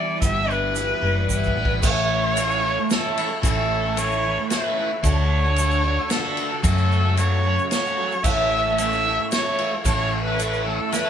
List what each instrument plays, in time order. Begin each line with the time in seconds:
Already playing: overdriven electric guitar E3 G3 B3, twelve-string acoustic guitar G3 B3 E4, viola D5
0.21 picked electric bass G1, overdriven electric guitar G2, twelve-string acoustic guitar D3 E3 G3 B3 E4, viola E5, kick, closed hi-hat, shaker
0.49 overdriven electric guitar G3, viola B4, shaker
0.75 overdriven electric guitar E3, twelve-string acoustic guitar G3 B3 E4, closed hi-hat, shaker
1.01 picked electric bass F#1, twelve-string acoustic guitar E3 B3 E4, overdriven electric guitar G3
1.28 picked electric bass G1, overdriven electric guitar E3, twelve-string acoustic guitar G3 B3 E4, viola B4, kick, shaker
1.43 kick, shaker
1.55 picked electric bass A1, overdriven electric guitar B3
1.65 kick
1.81 picked electric bass A1, overdriven electric guitar A2 E3 A3 C#4 E4, tonewheel organ A4 E5 C#6, viola C#5, kick, crash, shaker
2.23 overdriven electric guitar A3 C#4 E4
2.37 overdriven electric guitar A2 E3 A3 C#4 E4, ride, shaker
2.51 shaker
2.64 overdriven electric guitar E3 A3 C#4 E4
2.78 muted overdriven electric guitar stroke
2.90 twelve-string acoustic guitar E3 A3 C#4 E4, viola A4, snare, ride, shaker
3.04 overdriven electric guitar A3 C#4 E4
3.17 overdriven electric guitar E3 A3 C#4 E4, ride
3.31 muted overdriven electric guitar stroke
3.42 picked electric bass A1, overdriven electric guitar A2 E3 A3 C#4 E4, viola A4, kick, ride, shaker
3.84 overdriven electric guitar A3 C#4 E4
3.97 overdriven electric guitar A2 E3 A3 C#4 E4, viola C#5, ride, shaker
4.11 shaker
4.24 overdriven electric guitar E3 A3 C#4 E4
4.39 muted overdriven electric guitar stroke
4.50 twelve-string acoustic guitar E3 A3 C#4 E4, viola B4, snare, ride, shaker
4.64 overdriven electric guitar A3 C#4 E4
4.78 overdriven electric guitar E3 A3 C#4 E4
4.91 muted overdriven electric guitar stroke
5.03 picked electric bass D2, overdriven electric guitar D3 A3 D4 F#4, tonewheel organ A4 F#5 A5, viola C#5, kick, ride, shaker
5.44 overdriven electric guitar A3 D4 F#4
5.56 overdriven electric guitar D3 A3 D4 F#4, ride, shaker
5.71 shaker
5.83 overdriven electric guitar D3 A3, twelve-string acoustic guitar F#4
5.87 overdriven electric guitar D4 F#4
5.99 muted overdriven electric guitar stroke
6.09 twelve-string acoustic guitar D3 A3 D4 F#4, viola A4, snare, ride, shaker
6.24 overdriven electric guitar A3 D4 F#4
6.37 overdriven electric guitar D3 A3 D4 F#4, ride
6.52 muted overdriven electric guitar stroke
6.62 picked electric bass F#2, overdriven electric guitar F#2 C#3 F#3 A3, viola A4, tonewheel organ F#5 C#6, kick, ride, shaker
6.67 overdriven electric guitar C#4 F#4
6.78 shaker
6.92 shaker
7.04 overdriven electric guitar F#3 A3 C#4 F#4
7.17 overdriven electric guitar F#2 C#3 F#3 A3 C#4 F#4, viola C#5, ride, shaker
7.43 overdriven electric guitar F#3 A3 C#4, twelve-string acoustic guitar F#4
7.47 overdriven electric guitar F#4
7.59 muted overdriven electric guitar stroke, shaker
7.70 twelve-string acoustic guitar F#3 A3 C#4 F#4, viola C#5, snare, ride, shaker
7.85 overdriven electric guitar F#3 A3 C#4 F#4, shaker
7.96 overdriven electric guitar F#3, twelve-string acoustic guitar F#4
8.00 overdriven electric guitar A3 C#4 F#4
8.12 muted overdriven electric guitar stroke, shaker
8.23 picked electric bass A1, overdriven electric guitar A2 E3, twelve-string acoustic guitar E4, tonewheel organ A4 E5, viola E5, kick, crash, shaker
8.28 overdriven electric guitar A3 C#4 A4
8.67 overdriven electric guitar A3 C#4 A4
8.78 overdriven electric guitar A2 E3 A3 C#4, twelve-string acoustic guitar E4, viola E5, ride, shaker
8.82 overdriven electric guitar A4
8.92 shaker
9.05 overdriven electric guitar E3 A3 C#4, twelve-string acoustic guitar E4
9.09 overdriven electric guitar A4
9.20 muted overdriven electric guitar stroke
9.31 twelve-string acoustic guitar E3 A3 C#4 E4, viola C#5, snare, ride, shaker
9.46 overdriven electric guitar A3 C#4 A4
9.59 overdriven electric guitar E3 A3 C#4 A4, ride
9.74 muted overdriven electric guitar stroke
9.85 picked electric bass A1, overdriven electric guitar A2 E3 A3 C#4 A4, twelve-string acoustic guitar E4, viola C#5, kick, ride, shaker
10.23 overdriven electric guitar C#4 A4, viola B4
10.29 overdriven electric guitar A3
10.39 overdriven electric guitar A2 E3 A3 C#4 A4, twelve-string acoustic guitar E4, ride, shaker
10.53 shaker
10.64 overdriven electric guitar E3 A3 C#4, twelve-string acoustic guitar E4, viola A4
10.68 overdriven electric guitar A4
10.80 muted overdriven electric guitar stroke
10.91 twelve-string acoustic guitar E3 A3 C#4 E4, viola B4, snare, ride, shaker
11.05 overdriven electric guitar A4